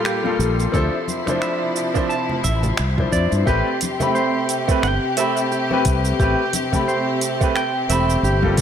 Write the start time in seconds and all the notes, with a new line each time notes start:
Already playing: A#2 G3 A#3 F4 A4 C6
0.05 G4, finger snap, cabasa
0.24 G3 A#3 F4 A4, high conga
0.39 A#1, cabasa
0.60 cabasa
0.72 D2 C3 F3 D4 E4 A4 C5, kick, cabasa
1.08 high conga, cabasa
1.26 F3 D4 E4 C5, finger snap, high conga, low conga, cabasa
1.42 E5, finger snap, cabasa
1.76 cabasa
1.94 F3 D4 E4 C5, kick, cabasa
2.09 A5, cabasa
2.29 low conga
2.44 A1 E5, kick, cabasa
2.63 low conga, cabasa
2.77 C2, finger snap, cabasa
2.97 F3 D4 E4 C5, kick, high conga
3.12 F2 D5, kick, cabasa
3.32 G2, cabasa
3.46 A1 C3 A3 C4 G4 B4, kick, cabasa
3.81 closed hi-hat, high conga, cabasa
4.00 A3 C4 G4 B5, high conga, low conga, cabasa
4.15 C5, cabasa
4.49 closed hi-hat, cabasa
4.68 A3 C4 G4 B4, kick, cabasa
4.83 G1 G5, finger snap, cabasa
5.17 A3 C4 G4 E5 B5, closed hi-hat, cabasa
5.37 cabasa
5.52 G4, cabasa
5.70 A3 C4 G4 B4, high conga
5.85 C2, kick, closed hi-hat, cabasa
6.05 cabasa
6.20 A1 A3 C4 G4 B4, kick, cabasa
6.53 closed hi-hat, high conga, cabasa
6.72 A3 C4 G4 B5, kick, high conga, low conga, cabasa
6.88 C5, cabasa
7.21 closed hi-hat, cabasa
7.41 A3 C4 G4 B4, kick, cabasa
7.56 G5, finger snap, cabasa
7.89 E1 A3 C4 G4 E5 B5, closed hi-hat, cabasa
8.10 cabasa
8.23 G1 G4, cabasa
8.42 G3 A#3 F4 A4, kick, high conga
8.57 kick, closed hi-hat, cabasa